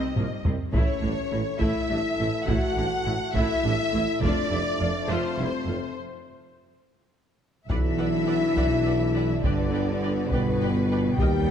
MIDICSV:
0, 0, Header, 1, 10, 480
1, 0, Start_track
1, 0, Tempo, 580271
1, 608, Time_signature, 6, 3, 24, 8
1, 9519, End_track
2, 0, Start_track
2, 0, Title_t, "Violin section"
2, 0, Program_c, 0, 48
2, 0, Note_on_c, 0, 75, 72
2, 349, Note_off_c, 0, 75, 0
2, 612, Note_on_c, 0, 73, 64
2, 1296, Note_off_c, 0, 73, 0
2, 1324, Note_on_c, 0, 76, 69
2, 2045, Note_off_c, 0, 76, 0
2, 2055, Note_on_c, 0, 78, 74
2, 2756, Note_off_c, 0, 78, 0
2, 2776, Note_on_c, 0, 76, 87
2, 3476, Note_off_c, 0, 76, 0
2, 3507, Note_on_c, 0, 74, 85
2, 4202, Note_off_c, 0, 74, 0
2, 4228, Note_on_c, 0, 72, 73
2, 4937, Note_off_c, 0, 72, 0
2, 6360, Note_on_c, 0, 78, 40
2, 6426, Note_off_c, 0, 78, 0
2, 6600, Note_on_c, 0, 78, 36
2, 6666, Note_off_c, 0, 78, 0
2, 6839, Note_on_c, 0, 78, 38
2, 6905, Note_off_c, 0, 78, 0
2, 7088, Note_on_c, 0, 78, 38
2, 7154, Note_off_c, 0, 78, 0
2, 7336, Note_on_c, 0, 78, 36
2, 7402, Note_off_c, 0, 78, 0
2, 7578, Note_on_c, 0, 78, 40
2, 7644, Note_off_c, 0, 78, 0
2, 7810, Note_on_c, 0, 79, 38
2, 7876, Note_off_c, 0, 79, 0
2, 8058, Note_on_c, 0, 79, 42
2, 8125, Note_off_c, 0, 79, 0
2, 8303, Note_on_c, 0, 79, 37
2, 8369, Note_off_c, 0, 79, 0
2, 8539, Note_on_c, 0, 79, 42
2, 8605, Note_off_c, 0, 79, 0
2, 8776, Note_on_c, 0, 79, 39
2, 8843, Note_off_c, 0, 79, 0
2, 9022, Note_on_c, 0, 79, 40
2, 9088, Note_off_c, 0, 79, 0
2, 9262, Note_on_c, 0, 79, 46
2, 9328, Note_off_c, 0, 79, 0
2, 9493, Note_on_c, 0, 79, 45
2, 9519, Note_off_c, 0, 79, 0
2, 9519, End_track
3, 0, Start_track
3, 0, Title_t, "Violin section"
3, 0, Program_c, 1, 48
3, 0, Note_on_c, 1, 75, 60
3, 353, Note_off_c, 1, 75, 0
3, 613, Note_on_c, 1, 73, 59
3, 1297, Note_off_c, 1, 73, 0
3, 1334, Note_on_c, 1, 76, 58
3, 2036, Note_off_c, 1, 76, 0
3, 2046, Note_on_c, 1, 78, 64
3, 2762, Note_on_c, 1, 76, 68
3, 2766, Note_off_c, 1, 78, 0
3, 3484, Note_off_c, 1, 76, 0
3, 3487, Note_on_c, 1, 74, 79
3, 4192, Note_off_c, 1, 74, 0
3, 4198, Note_on_c, 1, 72, 58
3, 4922, Note_off_c, 1, 72, 0
3, 6357, Note_on_c, 1, 76, 65
3, 7771, Note_off_c, 1, 76, 0
3, 7802, Note_on_c, 1, 74, 50
3, 8512, Note_off_c, 1, 74, 0
3, 8512, Note_on_c, 1, 71, 55
3, 9233, Note_on_c, 1, 79, 67
3, 9242, Note_off_c, 1, 71, 0
3, 9519, Note_off_c, 1, 79, 0
3, 9519, End_track
4, 0, Start_track
4, 0, Title_t, "Viola section"
4, 0, Program_c, 2, 48
4, 0, Note_on_c, 2, 55, 54
4, 0, Note_on_c, 2, 60, 53
4, 111, Note_off_c, 2, 55, 0
4, 113, Note_off_c, 2, 60, 0
4, 135, Note_on_c, 2, 53, 40
4, 137, Note_on_c, 2, 58, 38
4, 201, Note_off_c, 2, 53, 0
4, 204, Note_off_c, 2, 58, 0
4, 378, Note_on_c, 2, 55, 43
4, 380, Note_on_c, 2, 60, 44
4, 444, Note_off_c, 2, 55, 0
4, 447, Note_off_c, 2, 60, 0
4, 618, Note_on_c, 2, 64, 54
4, 619, Note_on_c, 2, 57, 47
4, 836, Note_off_c, 2, 64, 0
4, 837, Note_off_c, 2, 57, 0
4, 855, Note_on_c, 2, 55, 36
4, 857, Note_on_c, 2, 62, 35
4, 921, Note_off_c, 2, 55, 0
4, 923, Note_off_c, 2, 62, 0
4, 1093, Note_on_c, 2, 57, 37
4, 1096, Note_on_c, 2, 64, 40
4, 1160, Note_off_c, 2, 57, 0
4, 1162, Note_off_c, 2, 64, 0
4, 1323, Note_on_c, 2, 57, 54
4, 1324, Note_on_c, 2, 64, 51
4, 1548, Note_off_c, 2, 57, 0
4, 1548, Note_off_c, 2, 64, 0
4, 1566, Note_on_c, 2, 55, 41
4, 1572, Note_on_c, 2, 62, 38
4, 1632, Note_off_c, 2, 55, 0
4, 1638, Note_off_c, 2, 62, 0
4, 1815, Note_on_c, 2, 57, 44
4, 1817, Note_on_c, 2, 64, 43
4, 1881, Note_off_c, 2, 57, 0
4, 1883, Note_off_c, 2, 64, 0
4, 2051, Note_on_c, 2, 64, 50
4, 2052, Note_on_c, 2, 57, 54
4, 2272, Note_off_c, 2, 64, 0
4, 2273, Note_off_c, 2, 57, 0
4, 2290, Note_on_c, 2, 55, 36
4, 2290, Note_on_c, 2, 62, 37
4, 2356, Note_off_c, 2, 55, 0
4, 2356, Note_off_c, 2, 62, 0
4, 2528, Note_on_c, 2, 57, 39
4, 2530, Note_on_c, 2, 64, 42
4, 2594, Note_off_c, 2, 57, 0
4, 2596, Note_off_c, 2, 64, 0
4, 2771, Note_on_c, 2, 57, 61
4, 2772, Note_on_c, 2, 64, 66
4, 2992, Note_off_c, 2, 57, 0
4, 2992, Note_off_c, 2, 64, 0
4, 3013, Note_on_c, 2, 62, 46
4, 3015, Note_on_c, 2, 55, 46
4, 3079, Note_off_c, 2, 62, 0
4, 3081, Note_off_c, 2, 55, 0
4, 3255, Note_on_c, 2, 64, 45
4, 3260, Note_on_c, 2, 57, 51
4, 3321, Note_off_c, 2, 64, 0
4, 3326, Note_off_c, 2, 57, 0
4, 3497, Note_on_c, 2, 57, 60
4, 3499, Note_on_c, 2, 65, 60
4, 3715, Note_off_c, 2, 57, 0
4, 3716, Note_off_c, 2, 65, 0
4, 3735, Note_on_c, 2, 55, 47
4, 3735, Note_on_c, 2, 64, 46
4, 3802, Note_off_c, 2, 55, 0
4, 3802, Note_off_c, 2, 64, 0
4, 3978, Note_on_c, 2, 65, 52
4, 3979, Note_on_c, 2, 57, 47
4, 4044, Note_off_c, 2, 65, 0
4, 4045, Note_off_c, 2, 57, 0
4, 4209, Note_on_c, 2, 57, 65
4, 4210, Note_on_c, 2, 65, 70
4, 4431, Note_off_c, 2, 57, 0
4, 4431, Note_off_c, 2, 65, 0
4, 4456, Note_on_c, 2, 55, 42
4, 4456, Note_on_c, 2, 64, 38
4, 4522, Note_off_c, 2, 55, 0
4, 4522, Note_off_c, 2, 64, 0
4, 4693, Note_on_c, 2, 57, 47
4, 4693, Note_on_c, 2, 65, 37
4, 4759, Note_off_c, 2, 57, 0
4, 4759, Note_off_c, 2, 65, 0
4, 6371, Note_on_c, 2, 71, 39
4, 6372, Note_on_c, 2, 74, 39
4, 6437, Note_off_c, 2, 71, 0
4, 6438, Note_off_c, 2, 74, 0
4, 6614, Note_on_c, 2, 71, 38
4, 6614, Note_on_c, 2, 74, 36
4, 6680, Note_off_c, 2, 71, 0
4, 6681, Note_off_c, 2, 74, 0
4, 6844, Note_on_c, 2, 74, 39
4, 6848, Note_on_c, 2, 71, 38
4, 6910, Note_off_c, 2, 74, 0
4, 6914, Note_off_c, 2, 71, 0
4, 7086, Note_on_c, 2, 71, 41
4, 7092, Note_on_c, 2, 74, 37
4, 7152, Note_off_c, 2, 71, 0
4, 7158, Note_off_c, 2, 74, 0
4, 7330, Note_on_c, 2, 71, 35
4, 7331, Note_on_c, 2, 74, 38
4, 7396, Note_off_c, 2, 71, 0
4, 7397, Note_off_c, 2, 74, 0
4, 7572, Note_on_c, 2, 71, 36
4, 7573, Note_on_c, 2, 74, 37
4, 7638, Note_off_c, 2, 71, 0
4, 7639, Note_off_c, 2, 74, 0
4, 7818, Note_on_c, 2, 71, 40
4, 7819, Note_on_c, 2, 74, 42
4, 7884, Note_off_c, 2, 71, 0
4, 7885, Note_off_c, 2, 74, 0
4, 8058, Note_on_c, 2, 71, 37
4, 8061, Note_on_c, 2, 74, 40
4, 8124, Note_off_c, 2, 71, 0
4, 8127, Note_off_c, 2, 74, 0
4, 8292, Note_on_c, 2, 71, 41
4, 8295, Note_on_c, 2, 74, 40
4, 8358, Note_off_c, 2, 71, 0
4, 8361, Note_off_c, 2, 74, 0
4, 8542, Note_on_c, 2, 74, 46
4, 8544, Note_on_c, 2, 71, 42
4, 8609, Note_off_c, 2, 74, 0
4, 8610, Note_off_c, 2, 71, 0
4, 8788, Note_on_c, 2, 74, 39
4, 8792, Note_on_c, 2, 71, 39
4, 8854, Note_off_c, 2, 74, 0
4, 8859, Note_off_c, 2, 71, 0
4, 9030, Note_on_c, 2, 74, 42
4, 9033, Note_on_c, 2, 71, 45
4, 9096, Note_off_c, 2, 74, 0
4, 9099, Note_off_c, 2, 71, 0
4, 9272, Note_on_c, 2, 70, 47
4, 9272, Note_on_c, 2, 75, 46
4, 9338, Note_off_c, 2, 70, 0
4, 9338, Note_off_c, 2, 75, 0
4, 9519, End_track
5, 0, Start_track
5, 0, Title_t, "French horn section"
5, 0, Program_c, 3, 60
5, 0, Note_on_c, 3, 63, 57
5, 342, Note_off_c, 3, 63, 0
5, 602, Note_on_c, 3, 61, 58
5, 1291, Note_off_c, 3, 61, 0
5, 1331, Note_on_c, 3, 64, 64
5, 2030, Note_on_c, 3, 66, 66
5, 2048, Note_off_c, 3, 64, 0
5, 2743, Note_off_c, 3, 66, 0
5, 2778, Note_on_c, 3, 64, 70
5, 3477, Note_off_c, 3, 64, 0
5, 3500, Note_on_c, 3, 62, 70
5, 4199, Note_off_c, 3, 62, 0
5, 4218, Note_on_c, 3, 60, 56
5, 4932, Note_off_c, 3, 60, 0
5, 6372, Note_on_c, 3, 64, 78
5, 7778, Note_off_c, 3, 64, 0
5, 7818, Note_on_c, 3, 62, 58
5, 8535, Note_off_c, 3, 62, 0
5, 8548, Note_on_c, 3, 59, 69
5, 9250, Note_on_c, 3, 67, 85
5, 9260, Note_off_c, 3, 59, 0
5, 9519, Note_off_c, 3, 67, 0
5, 9519, End_track
6, 0, Start_track
6, 0, Title_t, "Trombone section"
6, 0, Program_c, 4, 61
6, 0, Note_on_c, 4, 55, 80
6, 0, Note_on_c, 4, 60, 79
6, 327, Note_off_c, 4, 55, 0
6, 328, Note_off_c, 4, 60, 0
6, 604, Note_on_c, 4, 52, 57
6, 609, Note_on_c, 4, 57, 55
6, 3450, Note_off_c, 4, 52, 0
6, 3453, Note_off_c, 4, 57, 0
6, 3486, Note_on_c, 4, 53, 67
6, 3489, Note_on_c, 4, 57, 69
6, 4893, Note_off_c, 4, 53, 0
6, 4894, Note_off_c, 4, 57, 0
6, 6357, Note_on_c, 4, 62, 46
6, 6362, Note_on_c, 4, 54, 48
6, 7771, Note_off_c, 4, 62, 0
6, 7773, Note_off_c, 4, 54, 0
6, 7811, Note_on_c, 4, 55, 48
6, 7815, Note_on_c, 4, 59, 50
6, 9254, Note_off_c, 4, 59, 0
6, 9256, Note_on_c, 4, 58, 55
6, 9519, Note_off_c, 4, 55, 0
6, 9519, Note_off_c, 4, 58, 0
6, 9519, End_track
7, 0, Start_track
7, 0, Title_t, "Cello section"
7, 0, Program_c, 5, 48
7, 132, Note_on_c, 5, 48, 34
7, 198, Note_off_c, 5, 48, 0
7, 371, Note_on_c, 5, 48, 33
7, 437, Note_off_c, 5, 48, 0
7, 602, Note_on_c, 5, 45, 57
7, 668, Note_off_c, 5, 45, 0
7, 846, Note_on_c, 5, 45, 40
7, 912, Note_off_c, 5, 45, 0
7, 1094, Note_on_c, 5, 45, 37
7, 1161, Note_off_c, 5, 45, 0
7, 1331, Note_on_c, 5, 45, 52
7, 1398, Note_off_c, 5, 45, 0
7, 1576, Note_on_c, 5, 45, 40
7, 1642, Note_off_c, 5, 45, 0
7, 1821, Note_on_c, 5, 45, 38
7, 1887, Note_off_c, 5, 45, 0
7, 2052, Note_on_c, 5, 45, 57
7, 2118, Note_off_c, 5, 45, 0
7, 2291, Note_on_c, 5, 45, 40
7, 2358, Note_off_c, 5, 45, 0
7, 2532, Note_on_c, 5, 45, 41
7, 2598, Note_off_c, 5, 45, 0
7, 2766, Note_on_c, 5, 45, 64
7, 2833, Note_off_c, 5, 45, 0
7, 3006, Note_on_c, 5, 45, 42
7, 3073, Note_off_c, 5, 45, 0
7, 3245, Note_on_c, 5, 45, 45
7, 3312, Note_off_c, 5, 45, 0
7, 3481, Note_on_c, 5, 41, 62
7, 3547, Note_off_c, 5, 41, 0
7, 3723, Note_on_c, 5, 41, 48
7, 3789, Note_off_c, 5, 41, 0
7, 3961, Note_on_c, 5, 41, 49
7, 4027, Note_off_c, 5, 41, 0
7, 4201, Note_on_c, 5, 41, 57
7, 4267, Note_off_c, 5, 41, 0
7, 4443, Note_on_c, 5, 41, 42
7, 4509, Note_off_c, 5, 41, 0
7, 4682, Note_on_c, 5, 41, 39
7, 4749, Note_off_c, 5, 41, 0
7, 6365, Note_on_c, 5, 52, 61
7, 7774, Note_off_c, 5, 52, 0
7, 7811, Note_on_c, 5, 50, 49
7, 8516, Note_off_c, 5, 50, 0
7, 8526, Note_on_c, 5, 47, 55
7, 9249, Note_off_c, 5, 47, 0
7, 9252, Note_on_c, 5, 55, 68
7, 9519, Note_off_c, 5, 55, 0
7, 9519, End_track
8, 0, Start_track
8, 0, Title_t, "Double bass section"
8, 0, Program_c, 6, 48
8, 144, Note_on_c, 6, 36, 37
8, 210, Note_off_c, 6, 36, 0
8, 369, Note_on_c, 6, 36, 36
8, 435, Note_off_c, 6, 36, 0
8, 618, Note_on_c, 6, 33, 50
8, 684, Note_off_c, 6, 33, 0
8, 848, Note_on_c, 6, 33, 38
8, 914, Note_off_c, 6, 33, 0
8, 1093, Note_on_c, 6, 33, 38
8, 1159, Note_off_c, 6, 33, 0
8, 1325, Note_on_c, 6, 33, 53
8, 1392, Note_off_c, 6, 33, 0
8, 1570, Note_on_c, 6, 33, 36
8, 1637, Note_off_c, 6, 33, 0
8, 1811, Note_on_c, 6, 33, 35
8, 1877, Note_off_c, 6, 33, 0
8, 2053, Note_on_c, 6, 33, 57
8, 2119, Note_off_c, 6, 33, 0
8, 2295, Note_on_c, 6, 33, 42
8, 2361, Note_off_c, 6, 33, 0
8, 2530, Note_on_c, 6, 33, 41
8, 2596, Note_off_c, 6, 33, 0
8, 2771, Note_on_c, 6, 33, 58
8, 2837, Note_off_c, 6, 33, 0
8, 3014, Note_on_c, 6, 33, 40
8, 3080, Note_off_c, 6, 33, 0
8, 3255, Note_on_c, 6, 33, 46
8, 3321, Note_off_c, 6, 33, 0
8, 3483, Note_on_c, 6, 29, 65
8, 3549, Note_off_c, 6, 29, 0
8, 3736, Note_on_c, 6, 29, 46
8, 3802, Note_off_c, 6, 29, 0
8, 3974, Note_on_c, 6, 29, 44
8, 4040, Note_off_c, 6, 29, 0
8, 4213, Note_on_c, 6, 29, 57
8, 4279, Note_off_c, 6, 29, 0
8, 4460, Note_on_c, 6, 29, 39
8, 4526, Note_off_c, 6, 29, 0
8, 4687, Note_on_c, 6, 29, 37
8, 4753, Note_off_c, 6, 29, 0
8, 6362, Note_on_c, 6, 35, 49
8, 7000, Note_off_c, 6, 35, 0
8, 7086, Note_on_c, 6, 35, 47
8, 7723, Note_off_c, 6, 35, 0
8, 7801, Note_on_c, 6, 31, 50
8, 8441, Note_off_c, 6, 31, 0
8, 8530, Note_on_c, 6, 31, 50
8, 9166, Note_off_c, 6, 31, 0
8, 9250, Note_on_c, 6, 39, 61
8, 9519, Note_off_c, 6, 39, 0
8, 9519, End_track
9, 0, Start_track
9, 0, Title_t, "Tuba"
9, 0, Program_c, 7, 58
9, 119, Note_on_c, 7, 36, 34
9, 216, Note_off_c, 7, 36, 0
9, 358, Note_on_c, 7, 36, 35
9, 456, Note_off_c, 7, 36, 0
9, 598, Note_on_c, 7, 33, 51
9, 696, Note_off_c, 7, 33, 0
9, 840, Note_on_c, 7, 33, 42
9, 937, Note_off_c, 7, 33, 0
9, 1082, Note_on_c, 7, 33, 36
9, 1179, Note_off_c, 7, 33, 0
9, 1311, Note_on_c, 7, 33, 50
9, 1410, Note_off_c, 7, 33, 0
9, 1560, Note_on_c, 7, 33, 37
9, 1657, Note_off_c, 7, 33, 0
9, 1795, Note_on_c, 7, 33, 40
9, 1893, Note_off_c, 7, 33, 0
9, 2035, Note_on_c, 7, 33, 52
9, 2133, Note_off_c, 7, 33, 0
9, 2284, Note_on_c, 7, 33, 42
9, 2381, Note_off_c, 7, 33, 0
9, 2521, Note_on_c, 7, 33, 39
9, 2618, Note_off_c, 7, 33, 0
9, 2767, Note_on_c, 7, 33, 56
9, 2862, Note_off_c, 7, 33, 0
9, 3007, Note_on_c, 7, 33, 47
9, 3102, Note_off_c, 7, 33, 0
9, 3246, Note_on_c, 7, 33, 48
9, 3342, Note_off_c, 7, 33, 0
9, 3486, Note_on_c, 7, 29, 59
9, 3582, Note_off_c, 7, 29, 0
9, 3726, Note_on_c, 7, 29, 48
9, 3822, Note_off_c, 7, 29, 0
9, 3961, Note_on_c, 7, 29, 44
9, 4058, Note_off_c, 7, 29, 0
9, 4207, Note_on_c, 7, 29, 60
9, 4303, Note_off_c, 7, 29, 0
9, 4439, Note_on_c, 7, 29, 41
9, 4536, Note_off_c, 7, 29, 0
9, 4681, Note_on_c, 7, 29, 40
9, 4778, Note_off_c, 7, 29, 0
9, 6355, Note_on_c, 7, 35, 44
9, 6997, Note_off_c, 7, 35, 0
9, 7072, Note_on_c, 7, 35, 44
9, 7716, Note_off_c, 7, 35, 0
9, 7801, Note_on_c, 7, 31, 44
9, 8441, Note_off_c, 7, 31, 0
9, 8522, Note_on_c, 7, 31, 48
9, 9162, Note_off_c, 7, 31, 0
9, 9242, Note_on_c, 7, 39, 52
9, 9519, Note_off_c, 7, 39, 0
9, 9519, End_track
10, 0, Start_track
10, 0, Title_t, "Taiko and cinematic ensemble drums"
10, 132, Note_on_c, 9, 45, 61
10, 215, Note_off_c, 9, 45, 0
10, 373, Note_on_c, 9, 43, 76
10, 455, Note_off_c, 9, 43, 0
10, 610, Note_on_c, 9, 41, 78
10, 693, Note_off_c, 9, 41, 0
10, 1334, Note_on_c, 9, 41, 59
10, 1416, Note_off_c, 9, 41, 0
10, 2053, Note_on_c, 9, 41, 75
10, 2136, Note_off_c, 9, 41, 0
10, 2775, Note_on_c, 9, 41, 66
10, 2858, Note_off_c, 9, 41, 0
10, 3492, Note_on_c, 9, 41, 52
10, 3575, Note_off_c, 9, 41, 0
10, 6368, Note_on_c, 9, 41, 77
10, 6450, Note_off_c, 9, 41, 0
10, 7086, Note_on_c, 9, 41, 61
10, 7169, Note_off_c, 9, 41, 0
10, 7808, Note_on_c, 9, 41, 76
10, 7891, Note_off_c, 9, 41, 0
10, 8528, Note_on_c, 9, 41, 62
10, 8611, Note_off_c, 9, 41, 0
10, 9253, Note_on_c, 9, 41, 78
10, 9336, Note_off_c, 9, 41, 0
10, 9519, End_track
0, 0, End_of_file